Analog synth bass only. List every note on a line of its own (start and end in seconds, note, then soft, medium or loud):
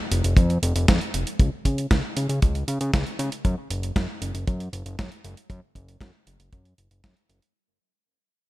0.11 0.22 F1 loud
0.24 0.35 F1 loud
0.37 0.58 F2 loud
0.63 0.73 F1 medium
0.76 0.86 F1 medium
0.89 0.99 F2 medium
1.14 1.25 F1 medium
1.39 1.50 C#2 loud
1.65 1.87 C#3 medium
1.91 2.02 C#2 loud
2.17 2.27 C#3 loud
2.29 2.40 C#3 medium
2.42 2.64 C#2 medium
2.68 2.79 C#3 medium
2.81 2.91 C#3 medium
2.94 3.04 C#2 medium
3.19 3.30 C#3 loud
3.45 3.55 F#2 loud
3.70 3.92 F#1 medium
3.96 4.07 F#2 loud
4.22 4.32 F#1 loud
4.34 4.45 F#1 medium
4.47 4.69 F#2 loud
4.73 4.84 F#1 medium
4.86 4.96 F#1 medium
4.99 5.10 F#2 medium
5.24 5.35 F#1 medium
5.50 5.60 F#2 loud
5.75 5.97 F#1 medium
6.01 6.12 F#2 medium
6.27 6.38 F#1 loud
6.40 6.50 F#1 medium
6.53 6.74 F#2 medium
6.78 6.89 F#1 medium
6.91 7.02 F#1 loud
7.04 7.15 F#2 medium
7.29 7.40 F#1 medium